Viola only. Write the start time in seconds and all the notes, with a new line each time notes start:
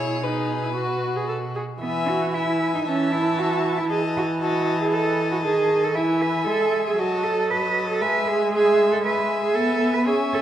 Already playing: E4
0.23 D#4
0.64 E4
0.76 F#4
1.17 G#4
1.29 A4
1.55 G#4
1.81 E3
2.86 E3
3.89 E3
5.44 D#3
5.95 E3
6.46 G#3
6.98 F#3
8.01 G#3
9.56 B3
10.07 C#4